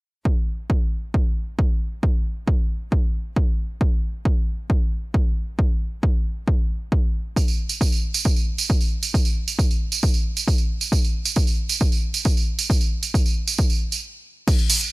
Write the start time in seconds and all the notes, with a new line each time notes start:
0.25 kick
0.70 kick
1.14 kick
1.59 kick
2.03 kick
2.48 kick
2.92 kick
3.36 kick
3.81 kick
4.25 kick
4.70 kick
5.14 kick
5.59 kick
6.03 kick
6.48 kick
6.92 kick
7.36 kick, tambourine
7.48 tambourine
7.69 tambourine
7.81 kick, tambourine
7.92 tambourine
8.14 tambourine
8.25 kick, tambourine
8.36 tambourine
8.58 tambourine
8.70 kick, tambourine
8.81 tambourine
9.03 tambourine
9.14 kick, tambourine
9.25 tambourine
9.48 tambourine
9.59 kick, tambourine
9.71 tambourine
9.92 tambourine
10.03 kick, tambourine
10.14 tambourine
10.37 tambourine
10.48 kick, tambourine
10.58 tambourine
10.81 tambourine
10.92 kick, tambourine
11.04 tambourine
11.25 tambourine
11.36 kick, tambourine
11.47 tambourine
11.69 tambourine
11.81 kick
11.92 tambourine
12.14 tambourine
12.25 kick, tambourine
12.37 tambourine
12.59 tambourine
12.70 kick, tambourine
12.81 tambourine
13.03 tambourine
13.14 kick, tambourine
13.26 tambourine
13.47 tambourine
13.58 kick, tambourine
13.70 tambourine
13.92 tambourine
14.48 kick, closed hi-hat, crash, tambourine
14.59 closed hi-hat, tambourine
14.70 open hi-hat, tambourine
14.81 closed hi-hat, tambourine